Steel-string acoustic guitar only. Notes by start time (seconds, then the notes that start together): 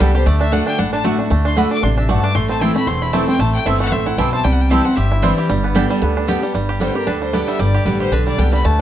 0.00 D3 G3 B3 G4
0.14 B3 G4
0.27 D3
0.52 D3 A3 D4 F#4
0.79 A2
1.04 D3 A3 D4 F#4
1.19 D4 F#4
1.30 D3
1.57 D3 A3 D4 F#4
1.83 C3
2.09 G2
2.35 A2
2.61 E3 A3 C4 E4
2.75 C4 E4
2.87 E2
3.13 E3 A3 C4 E4
3.27 C4 E4
3.39 A2
3.66 E3 A3 C4 E4
3.92 A2
4.18 B2
4.45 C3
4.71 E3 G3 C4 E4
4.84 C4 E4
4.97 G2
5.22 E3 G3 C4 E4
5.49 G2
5.75 D3 G3 B3 G4
6.02 D3
6.27 D3 G3 B3 G4
6.41 B3 G4
6.54 G2
6.80 D3 G3 B3 G4
6.95 B3 G4
7.07 D3
7.33 D3 G3 B3 G4
7.60 G2
7.86 D3 G3 B3 G4
8.12 D3
8.38 D3 G3 B3 G4
8.65 D3